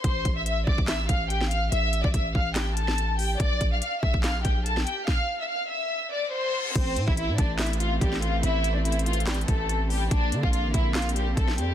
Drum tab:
CC |------------------------------------------------|------------------------------------------------|------------------------------------------------|------------------------------------------------|
HH |x-----x-----x-----------x-----x-----x-----x-----|x-----x-----x-----------x-----x-----x-----o-----|x-----x-----x-----------x-----x-----x-----x-----|------------------------------------------------|
CP |------------------------x-----------------------|------------------------x-----------------------|------------------------x-----------------------|------------------------------------------------|
SD |------------------------o--------------o--------|------------------------o--------o--------------|------------------------o--------------o--------|o-----------------------------------------------|
BD |o-----o-----------o--o--------o-----------------|---------o--o-----o-----------------------------|o-----o-----------o--o--------o-----------------|o-----------------------------------------------|

CC |x-----------------------------------------------|------------------------------------------------|------------------------------------------------|
HH |x-----x-----x-----x-----x-x-x-x-----x-----x-----|x-----x-----x-x-x-x-x-x-x-x-x-x-----x-----o-----|x-----x-----x-----x-----x-x-x-x-----x-----x-----|
CP |------------------------x-----------------------|------------------------x-----------------------|------------------------x-----------------------|
SD |------------------------o--------------o--------|------------------------o-----------------------|------------------------o--------------o--------|
BD |o--------o--------o-----------------o-----------|------------------------------o-----------------|o--------o--------o-----------------o-----------|